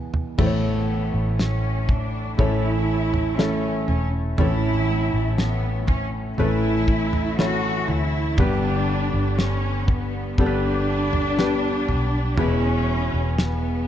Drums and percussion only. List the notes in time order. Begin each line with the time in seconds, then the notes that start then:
0.14 floor tom
0.39 kick, floor tom, crash
1.39 snare
1.89 kick, floor tom
2.39 kick, floor tom
3.14 floor tom
3.39 snare
3.88 floor tom
4.38 floor tom
5.38 snare
5.88 kick, floor tom
6.38 floor tom
6.88 kick
7.13 floor tom
7.39 snare
7.88 floor tom
8.38 kick, floor tom
9.39 snare
9.88 kick, floor tom
10.38 kick, floor tom
11.13 floor tom
11.39 snare
11.89 floor tom
12.37 floor tom
13.38 snare